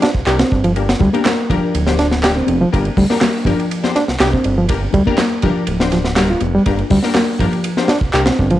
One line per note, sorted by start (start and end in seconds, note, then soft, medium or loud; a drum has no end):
0.02 0.10 D4 loud
0.02 snare medium
0.02 ride medium
0.15 0.24 C2 soft
0.15 kick medium
0.26 0.43 C2 medium
0.26 0.37 A#3 medium
0.26 0.37 D4 medium
0.26 0.37 G4 medium
0.26 0.34 G4 loud
0.26 0.37 A#4 medium
0.26 clap loud
0.26 ride medium
0.39 0.63 C4 medium
0.39 snare loud
0.39 ride medium
0.52 0.94 G1 medium
0.52 kick medium
0.64 0.71 F3 loud
0.64 ride medium
0.76 0.82 A#3 medium
0.76 0.82 D4 medium
0.76 0.82 G4 medium
0.76 0.82 A#4 medium
0.76 ride medium
0.89 snare medium
0.89 ride medium
0.99 1.09 D2 loud
0.99 1.08 G3 loud
0.99 kick medium
0.99 low conga medium
1.13 1.20 A#3 medium
1.13 1.47 A#3 loud
1.13 1.47 D4 medium
1.13 1.47 G4 medium
1.13 1.47 A#4 loud
1.13 ride medium
1.13 high conga medium
1.25 1.49 A#3 medium
1.25 snare loud
1.25 clap loud
1.25 ride medium
1.25 low conga medium
1.49 1.58 G1 loud
1.49 1.98 F3 medium
1.49 1.84 A#3 medium
1.49 1.84 D4 medium
1.49 1.84 G4 medium
1.49 1.84 A#4 loud
1.49 kick medium
1.49 ride medium
1.74 2.42 D1 medium
1.74 ride medium
1.86 1.96 A#3 medium
1.86 1.96 D4 medium
1.86 1.96 G4 medium
1.86 1.96 C5 medium
1.86 snare medium
1.86 high conga medium
1.99 2.07 D4 loud
1.99 snare soft
1.99 ride medium
2.11 snare soft
2.11 high conga medium
2.23 2.33 A#3 medium
2.23 2.33 D4 medium
2.23 2.33 G4 medium
2.23 2.31 G4 medium
2.23 2.33 A#4 medium
2.23 snare loud
2.23 clap loud
2.23 ride medium
2.36 2.60 C4 medium
2.47 2.65 F1 loud
2.47 ride medium
2.47 high conga medium
2.61 2.68 F3 loud
2.72 2.90 G1 loud
2.72 2.79 A#3 medium
2.72 2.79 D4 medium
2.72 2.79 G4 medium
2.72 2.79 A#4 medium
2.72 kick loud
2.72 ride medium
2.85 ride soft
2.97 3.05 D2 loud
2.97 3.05 G3 loud
2.97 kick loud
2.97 open hi-hat medium
2.97 low conga medium
3.10 3.43 A#3 medium
3.10 3.17 A#3 medium
3.10 3.43 D4 medium
3.10 3.43 G4 medium
3.10 3.43 A#4 loud
3.10 snare soft
3.21 3.45 A#3 medium
3.21 snare loud
3.21 clap loud
3.21 ride medium
3.21 low conga medium
3.45 3.54 G1 loud
3.45 3.94 F3 medium
3.45 3.81 A#3 medium
3.45 3.80 D4 medium
3.45 3.81 G4 medium
3.45 3.81 A#4 loud
3.45 kick medium
3.45 ride medium
3.60 ride soft
3.71 ride medium
3.83 3.93 A#3 medium
3.83 3.93 D4 medium
3.83 3.93 G4 medium
3.83 3.93 C5 medium
3.83 snare soft
3.83 high conga medium
3.95 4.03 D4 loud
3.95 snare soft
3.95 ride medium
4.08 4.18 C2 soft
4.08 snare soft
4.20 4.37 C2 medium
4.20 4.30 A#3 medium
4.20 4.30 D4 medium
4.20 4.30 G4 medium
4.20 4.28 G4 loud
4.20 4.30 A#4 loud
4.20 snare loud
4.20 clap loud
4.20 ride medium
4.33 4.56 C4 medium
4.33 kick medium
4.44 4.88 G1 medium
4.44 ride medium
4.58 4.65 F3 loud
4.69 4.76 A#3 medium
4.69 4.76 D4 medium
4.69 4.76 G4 medium
4.69 4.76 A#4 medium
4.69 kick loud
4.69 ride medium
4.93 5.02 D2 medium
4.93 5.02 G3 loud
4.93 kick medium
4.93 ride medium
4.93 low conga medium
5.06 5.40 A#3 loud
5.06 5.14 A#3 medium
5.06 5.40 D4 medium
5.06 5.40 G4 medium
5.06 5.40 A#4 loud
5.06 kick medium
5.06 high conga medium
5.18 5.42 A#3 medium
5.18 snare loud
5.18 clap loud
5.18 ride medium
5.18 low conga medium
5.42 5.52 G1 medium
5.42 5.91 F3 medium
5.42 5.77 A#3 medium
5.42 5.77 D4 medium
5.42 5.77 G4 medium
5.42 5.77 A#4 loud
5.42 kick medium
5.42 ride medium
5.67 6.35 D1 medium
5.67 ride medium
5.80 5.90 A#3 medium
5.80 5.90 D4 medium
5.80 5.90 G4 medium
5.80 5.90 C5 medium
5.80 snare medium
5.80 high conga medium
5.92 5.97 F3 medium
5.92 snare soft
5.92 ride medium
6.05 snare soft
6.05 high conga medium
6.16 6.29 G3 medium
6.16 6.27 A#3 medium
6.16 6.27 D4 medium
6.16 6.27 G4 medium
6.16 6.27 A#4 loud
6.16 snare loud
6.16 clap loud
6.16 ride medium
6.30 6.41 F4 medium
6.40 6.58 F1 loud
6.40 ride medium
6.40 high conga medium
6.55 6.62 G3 loud
6.66 6.83 G1 loud
6.66 6.72 A#3 medium
6.66 6.72 D4 medium
6.66 6.72 G4 medium
6.66 6.72 A#4 medium
6.66 kick loud
6.66 ride medium
6.79 ride soft
6.90 6.99 D2 loud
6.90 6.98 G3 loud
6.90 kick medium
6.90 open hi-hat medium
6.90 low conga medium
7.03 7.37 A#3 medium
7.03 7.11 A#3 medium
7.03 7.37 D4 medium
7.03 7.37 G4 medium
7.03 7.37 A#4 loud
7.03 snare soft
7.15 7.39 A#3 medium
7.15 snare loud
7.15 clap loud
7.15 ride medium
7.15 low conga medium
7.39 7.48 G1 medium
7.39 7.88 F3 medium
7.39 7.74 A#3 medium
7.39 7.74 D4 medium
7.39 7.74 G4 medium
7.39 7.74 A#4 loud
7.39 kick medium
7.39 ride medium
7.53 ride soft
7.64 ride medium
7.77 7.87 A#3 medium
7.77 7.87 D4 medium
7.77 7.87 G4 medium
7.77 7.87 C5 medium
7.77 snare soft
7.77 high conga medium
7.88 7.97 D4 loud
7.88 snare medium
7.88 ride medium
8.01 8.11 C2 soft
8.01 kick medium
8.13 8.30 C2 medium
8.13 8.24 A#3 medium
8.13 8.24 D4 medium
8.13 8.21 G4 loud
8.13 8.24 G4 medium
8.13 8.24 A#4 loud
8.13 clap loud
8.13 ride medium
8.26 8.50 C4 medium
8.26 snare loud
8.26 ride medium
8.39 8.60 G1 medium
8.39 kick medium
8.50 8.58 F3 loud
8.50 ride medium